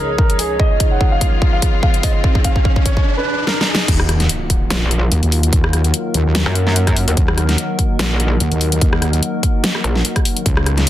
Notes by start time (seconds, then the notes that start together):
Already playing: C#2 C#3 F3 D#4 G#4 A#4 C#5 D#5, riser
0.18 A#4, kick
0.30 closed hi-hat
0.39 G#4, open hi-hat
0.59 F4 D#5, kick
0.80 kick, closed hi-hat
0.91 F#5
1.01 kick
1.12 F5
1.21 kick, closed hi-hat
1.42 kick
1.53 F5
1.62 kick, closed hi-hat
1.83 F5, kick
1.94 closed hi-hat
2.03 D#5, kick, open hi-hat
2.24 kick
2.35 kick
2.44 F5, kick, closed hi-hat
2.56 kick
2.65 kick
2.76 kick
2.86 C#5, kick, closed hi-hat
2.97 kick
3.17 B4
3.47 A#4, snare
3.61 snare
3.68 G#4
3.75 snare
3.88 D#2 D#3 A#3 F4 F#4, kick, closed hi-hat, crash, impact
4.00 cross-stick
4.08 F#3, cross-stick, closed hi-hat
4.20 snare, closed hi-hat
4.29 A#4, closed hi-hat
4.50 kick, closed hi-hat
4.70 A#1, snare, closed hi-hat
4.91 closed hi-hat
5.12 D#2, closed hi-hat
5.23 D#2, closed hi-hat
5.32 open hi-hat
5.43 closed hi-hat
5.53 D#2, kick, closed hi-hat
5.64 cross-stick
5.73 cross-stick, closed hi-hat
5.84 closed hi-hat
5.94 closed hi-hat
6.14 D#2, closed hi-hat
6.35 snare, closed hi-hat
6.46 F#2, cross-stick
6.55 closed hi-hat
6.67 snare
6.76 closed hi-hat
6.87 kick, cross-stick, closed hi-hat
6.97 open hi-hat
7.08 D#2, closed hi-hat
7.17 D#2 D#4, kick, closed hi-hat
7.28 cross-stick
7.38 cross-stick, closed hi-hat
7.49 snare, closed hi-hat
7.58 closed hi-hat
7.79 kick, closed hi-hat
7.99 A#1, snare, closed hi-hat
8.20 closed hi-hat
8.40 D#2, closed hi-hat
8.52 D#2, closed hi-hat
8.61 open hi-hat
8.72 closed hi-hat
8.81 D#2, kick, closed hi-hat
8.93 cross-stick
9.02 cross-stick, closed hi-hat
9.13 closed hi-hat
9.23 closed hi-hat
9.43 kick, closed hi-hat
9.64 snare, closed hi-hat
9.75 cross-stick
9.84 A#1, closed hi-hat
9.95 snare
10.05 closed hi-hat
10.16 kick, cross-stick, closed hi-hat
10.25 open hi-hat
10.37 closed hi-hat
10.46 C#2 C#3 C#4 D#4 F4, kick, closed hi-hat
10.57 cross-stick
10.66 cross-stick, closed hi-hat
10.74 G#4, snare, closed hi-hat